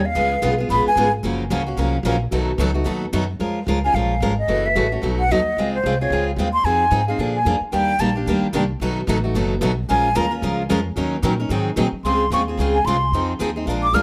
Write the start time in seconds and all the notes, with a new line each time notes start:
Already playing: D#2
0.06 F5
0.15 C#2 C#3 G#3 B3 F4 G#4
0.42 B1 C#3 G#3 B3 F4 G#4
0.58 B3 F4 G#4
0.69 A#1 C#3 G#3 B3 F4 G#4 B5
0.85 G#5, muted upright bass stroke
0.95 G#1 C#3 G#3 B3 F4 G#4
1.23 F#1 C#3 F3 F#3 A#3 C#4 F4 F#4 A#4
1.50 C#2 C#3 F3 F#3 A#3 C#4 F4 F#4 A#4
1.67 A#3 C#4 F#4
1.77 C2 C#3 F3 F#3 A#3 C#4 F4 F#4 A#4
2.03 A#1 C#3 F3 F#3 A#3 C#4 F4 F#4 A#4
2.31 B1 B2 D#3 F#3 A3 B3 D#4 F#4 A4
2.58 C#2 B2 D#3 F#3 A3 B3 D#4 F#4 A4
2.74 A3 D#4 F#4
2.84 D#2 B2 D#3 F#3 A3 B3 D#4 F#4 A4
3.13 F#2 B2 D#3 F#3 A3 B3 D#4 F#4 A4
3.39 F2 F3 G#3 C#4 F4 A#4
3.67 C#2 F3 G#3 C#4 F4 A#4
3.84 C#4 F4 A#4 G#5
3.94 A#1 F3 G#3 C#4 F4 A#4 F5
4.20 G#1 F3 G#3 C#4 F4 A#4
4.38 D#5
4.47 F#1 C#3 E3 A3 C#4 F#4
4.66 E5
4.75 A1 C#3 E3 A3 C#4 F#4
4.92 A3 C#4 F#4
5.02 B1 B2 F#3 A3 D#4 F#4
5.19 F#5
5.29 D#2 B2 F#3 A3 D#4 F#4 D#5
5.57 C#2 C#3 G#3 C4 F4 G#4
5.75 C5
5.83 C2 C#3 G#3 C4 F4 G#4
6.01 C4 F4 G#4 C#5
6.10 C#2 C#3 G#3 C4 F4 G#4
6.36 D#2 C#3 G#3 C4 F4 G#4
6.54 C6
6.63 F2 F3 C4 D#4 G#4 G#5
6.91 G#2 F3 C4 D#4 G#4
7.08 C4 D#4 G#4 F5
7.18 A#2 D3 F3 A#3 D4 G#4
7.35 G#5
7.45 F2 D3 F3 A#3 D4 G#4
7.60 muted upright bass stroke
7.72 D#2 D#3 G3 A#3 D4 G4 G5
7.99 A#1 D#3 G3 A#3 D4 G4 A5
8.16 A#3 D4 G4
8.26 D2 D#3 G3 A#3 D4 G4
8.42 muted upright bass stroke
8.53 C2 D#3 G3 A#3 D4 G4
8.80 B1 B2 D#3 F#3 A3 B3 D#4 F#4 A4
9.07 A1 B2 D#3 F#3 A3 B3 D#4 F#4 A4
9.24 A3 D#4 F#4
9.35 F#1 B2 D#3 F#3 A3 B3 D#4 F#4 A4
9.61 B1 B2 D#3 F#3 A3 B3 D#4 F#4 A4
9.89 A#1 F3 G#3 C#4 F4 A#4 G#5
10.15 D#2 F3 G#3 C#4 F4 A#4 A#5
10.31 C#4 F4 A#4
10.42 C#2 F3 G#3 C#4 F4 A#4
10.69 F2 F3 G#3 C#4 F4 A#4
10.96 D#2 D#3 F#3 C#4 D#4 A#4
11.22 A#2 D#3 F#3 C#4 D#4 A#4
11.40 C#4 D#4 A#4
11.49 G#2 D#3 F#3 C4 D#4 G#4
11.76 A#2 D#3 F#3 C4 D#4 G#4
11.92 muted upright bass stroke
12.03 C#2 C#3 G#3 C4 F4 G#4 C6
12.30 D#2 C#3 G#3 C4 F4 G#4 C#6
12.48 C4 F4 G#4
12.57 C#2 C#3 G#3 C4 F4 G#4
12.75 G#5
12.84 C2 C#3 G#3 C4 F4 G#4 C6
13.12 F2 F3 C4 D#4 G#4
13.39 D#2 F3 C4 D#4 G#4
13.56 C4 D#4 G#4
13.66 A#1 F3 G#3 D4 F4 A#4
13.83 D6
13.92 D2 F3 G#3 D4 F4 A#4 F6